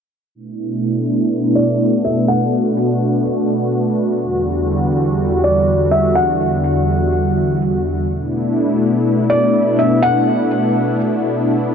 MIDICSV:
0, 0, Header, 1, 3, 480
1, 0, Start_track
1, 0, Key_signature, 2, "minor"
1, 0, Tempo, 483871
1, 348, Time_signature, 4, 2, 24, 8
1, 11654, End_track
2, 0, Start_track
2, 0, Title_t, "Felt piano"
2, 0, Program_c, 0, 0
2, 1542, Note_on_c, 0, 74, 80
2, 1996, Note_off_c, 0, 74, 0
2, 2030, Note_on_c, 0, 76, 71
2, 2257, Note_off_c, 0, 76, 0
2, 2265, Note_on_c, 0, 78, 95
2, 3187, Note_off_c, 0, 78, 0
2, 5395, Note_on_c, 0, 74, 74
2, 5843, Note_off_c, 0, 74, 0
2, 5867, Note_on_c, 0, 76, 76
2, 6096, Note_off_c, 0, 76, 0
2, 6105, Note_on_c, 0, 78, 86
2, 7507, Note_off_c, 0, 78, 0
2, 9223, Note_on_c, 0, 74, 80
2, 9677, Note_off_c, 0, 74, 0
2, 9710, Note_on_c, 0, 76, 73
2, 9937, Note_off_c, 0, 76, 0
2, 9945, Note_on_c, 0, 78, 96
2, 10867, Note_off_c, 0, 78, 0
2, 11654, End_track
3, 0, Start_track
3, 0, Title_t, "Analog synth pad"
3, 0, Program_c, 1, 89
3, 347, Note_on_c, 1, 57, 69
3, 347, Note_on_c, 1, 59, 72
3, 347, Note_on_c, 1, 62, 71
3, 347, Note_on_c, 1, 64, 88
3, 348, Note_on_c, 1, 47, 75
3, 2248, Note_off_c, 1, 64, 0
3, 2268, Note_on_c, 1, 66, 88
3, 4149, Note_off_c, 1, 57, 0
3, 4149, Note_off_c, 1, 59, 0
3, 4149, Note_off_c, 1, 62, 0
3, 4150, Note_off_c, 1, 47, 0
3, 4189, Note_on_c, 1, 40, 77
3, 4190, Note_on_c, 1, 50, 71
3, 4190, Note_on_c, 1, 55, 72
3, 7988, Note_off_c, 1, 66, 0
3, 7990, Note_off_c, 1, 40, 0
3, 7990, Note_off_c, 1, 50, 0
3, 7991, Note_off_c, 1, 55, 0
3, 8028, Note_on_c, 1, 59, 74
3, 8029, Note_on_c, 1, 47, 81
3, 8029, Note_on_c, 1, 57, 69
3, 8029, Note_on_c, 1, 62, 71
3, 8029, Note_on_c, 1, 64, 87
3, 11654, Note_off_c, 1, 47, 0
3, 11654, Note_off_c, 1, 57, 0
3, 11654, Note_off_c, 1, 59, 0
3, 11654, Note_off_c, 1, 62, 0
3, 11654, Note_off_c, 1, 64, 0
3, 11654, End_track
0, 0, End_of_file